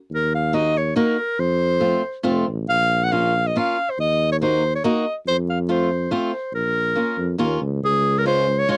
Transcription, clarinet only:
0.15 0.33 A#4 medium
0.35 0.56 F5 medium
0.54 0.79 D#5 medium
0.78 0.96 C#5 medium
0.96 1.41 A#4 medium
1.40 2.25 C5 medium
2.69 3.05 F5 loud
3.04 3.14 F#5 loud
3.12 3.49 F5 medium
3.47 3.59 D#5 medium
3.58 3.92 F5 medium
3.90 4.00 C5 medium
4.00 4.30 D#5 medium
4.32 4.37 C#5 medium
4.43 4.72 C5 medium
4.76 4.84 C#5 medium
4.85 5.15 D#5 medium
5.28 5.37 C5 loud
5.50 5.59 F5 medium
5.71 6.09 C5 medium
6.13 6.51 C5 medium
6.54 7.35 A#4 medium
7.85 8.20 G#4 loud
8.18 8.26 A#4 medium
8.27 8.60 C5 medium
8.59 8.69 C#5 medium
8.71 8.77 C#5 medium

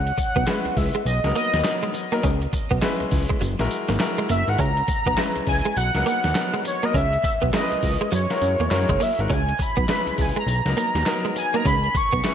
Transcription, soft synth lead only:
0.00 0.79 F#5 loud
0.77 1.06 E5 loud
1.07 1.34 D#5 loud
1.37 1.91 D#5 medium
4.31 4.50 E5 medium
4.49 4.62 F#5 medium
4.60 5.48 A#5 loud
5.48 5.75 G#5 medium
5.77 6.04 F#5 loud
6.07 6.62 F#5 medium
6.67 6.87 C#5 medium
6.85 6.95 D#5 medium
6.96 7.50 E5 loud
7.55 8.09 D#5 medium
8.15 9.04 C#5 loud
9.03 9.22 E5 loud
9.21 9.35 F#5 loud
9.33 9.63 G#5 loud
9.62 10.23 B5 loud
10.21 10.38 G#5 loud
10.39 11.33 A#5 loud
11.38 11.57 G#5 loud
11.56 11.66 A#5 loud
11.67 11.98 B5 loud
11.97 12.34 C#6 loud

